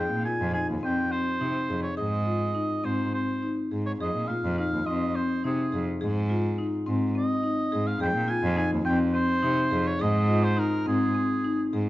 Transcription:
Already playing: marimba G#4, oboe G5
0.12 cello A#2
0.25 marimba F4, oboe G#5
0.41 cello F2
0.54 marimba D#4, oboe G#5
0.70 cello D#2
0.83 cello F2, marimba C4, oboe G5
1.11 marimba C4, oboe C5
1.41 cello C3, marimba D#4
1.69 cello F2, marimba G#4
1.82 oboe C#5
1.97 cello G#2, marimba G#4, oboe D#5
2.25 marimba F4
2.55 marimba D#4
2.84 cello G#2, marimba C4, oboe C5
3.13 marimba C4, oboe C5
3.43 marimba D#4
3.71 cello G#2, marimba G#4
3.86 oboe C#5
4.00 cello F2, marimba G#4, oboe D#5
4.16 cello A#2
4.28 marimba F4, oboe F5
4.44 cello F2
4.58 marimba D#4, oboe F5
4.73 cello D#2
4.86 cello F2, marimba C4, oboe D#5
5.15 marimba C4, oboe C5
5.44 cello C3, marimba D#4, oboe G#4
5.72 cello F2, marimba G#4
6.01 cello G#2, marimba G#4
6.30 marimba F4
6.58 marimba D#4
6.86 cello G#2, marimba C4
7.15 marimba C4, oboe D#5
7.43 marimba D#4
7.72 cello G#2, marimba G#4
7.87 oboe F5
8.00 cello F2, marimba G#4, oboe G5
8.15 cello A#2
8.28 marimba F4, oboe G#5
8.44 cello F2
8.57 marimba D#4, oboe G#5
8.72 cello D#2
8.85 cello F2, marimba C4, oboe G5
9.14 marimba C4, oboe C5
9.42 cello C3, marimba D#4
9.71 cello F2, marimba G#4
9.87 oboe C#5
9.99 cello G#2, marimba G#4, oboe D#5
10.28 marimba F4
10.44 oboe C5
10.57 marimba D#4, oboe A#4
10.86 cello G#2, marimba C4, oboe G#4
11.15 marimba C4
11.44 marimba D#4
11.73 cello G#2, marimba G#4

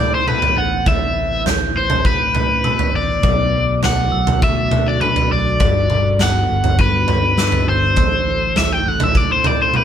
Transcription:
Already playing: fingered electric bass A2, analog synth pad C3 A3 E4 A4, clean electric guitar E3 C4, overdriven electric guitar D5, glockenspiel G6
0.00 clean electric guitar E4
0.15 overdriven electric guitar C5
0.28 clean electric guitar B3, overdriven electric guitar B4, mid tom
0.42 floor tom
0.57 fingered electric bass A1, clean electric guitar C4, overdriven electric guitar F#5, glockenspiel A6
0.86 fingered electric bass A1, clean electric guitar A2, analog synth pad B4, overdriven electric guitar E5, kick, floor tom
1.17 clean electric guitar E3
1.46 clean electric guitar C4, glockenspiel G6, snare, floor tom
1.76 fingered electric bass A1, clean electric guitar E3, overdriven electric guitar C5
1.90 floor tom, mid tom
2.05 fingered electric bass A2, clean electric guitar C4, overdriven electric guitar B4, glockenspiel F#6, kick
2.35 clean electric guitar E4, floor tom, mid tom
2.64 clean electric guitar B3, glockenspiel E6, mid tom
2.79 floor tom
2.94 fingered electric bass A1, clean electric guitar C4, overdriven electric guitar D5
3.23 fingered electric bass B1, clean electric guitar B2, analog synth pad D3 F#4 A4, glockenspiel D6, kick, floor tom
3.54 clean electric guitar F#3
3.83 clean electric guitar A3, overdriven electric guitar F#5, snare, floor tom
4.12 fingered electric bass B1, clean electric guitar F#3, glockenspiel E6
4.27 floor tom, mid tom
4.42 fingered electric bass B2, clean electric guitar A3, overdriven electric guitar E5, kick
4.71 clean electric guitar F#4, glockenspiel F#6, floor tom, mid tom
4.88 overdriven electric guitar D5
5.01 clean electric guitar D4, overdriven electric guitar B4, mid tom
5.16 floor tom
5.31 fingered electric bass B1, clean electric guitar A3, overdriven electric guitar D5, glockenspiel A6
5.60 fingered electric bass G1, analog synth pad G3, clean electric guitar G3, kick, floor tom
5.90 clean electric guitar G3, mid tom
6.19 clean electric guitar B3, overdriven electric guitar F#5, glockenspiel G7, snare, floor tom
6.50 fingered electric bass G1, clean electric guitar G3
6.64 floor tom
6.79 fingered electric bass G2, clean electric guitar B3, overdriven electric guitar B4, glockenspiel F#6, kick
7.08 clean electric guitar F#4, floor tom
7.38 clean electric guitar D4, glockenspiel E6, snare
7.52 floor tom
7.68 fingered electric bass G1, clean electric guitar B3, overdriven electric guitar C5
7.96 fingered electric bass A1, clean electric guitar A2, analog synth pad C3 A3 E4, glockenspiel E6, kick, floor tom
8.27 clean electric guitar E3
8.56 clean electric guitar C4, overdriven electric guitar E5, snare, floor tom
8.73 overdriven electric guitar G5
8.86 fingered electric bass A1, clean electric guitar E3, overdriven electric guitar F#5, glockenspiel F#6
9.00 overdriven electric guitar E5, floor tom, mid tom
9.15 fingered electric bass A2, clean electric guitar C4, overdriven electric guitar D5, kick
9.33 overdriven electric guitar C5
9.44 clean electric guitar E4, overdriven electric guitar D5, glockenspiel G6, floor tom, mid tom
9.62 overdriven electric guitar C5
9.74 clean electric guitar B3, overdriven electric guitar B4, mid tom

